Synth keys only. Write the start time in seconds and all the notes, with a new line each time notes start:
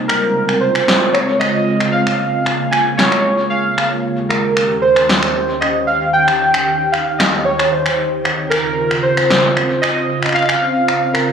0.08 A#4
0.60 C5
1.13 C#5
1.39 D#5
1.92 F5
2.71 G#5
2.97 C#5
3.50 F5
4.29 A#4
4.82 C5
5.61 D#5
5.87 F5
6.13 G5
6.92 F5
7.18 D#5
7.45 C#5
7.71 C5
8.50 A#4
9.03 C5
9.82 D#5
10.34 F5
11.13 A#4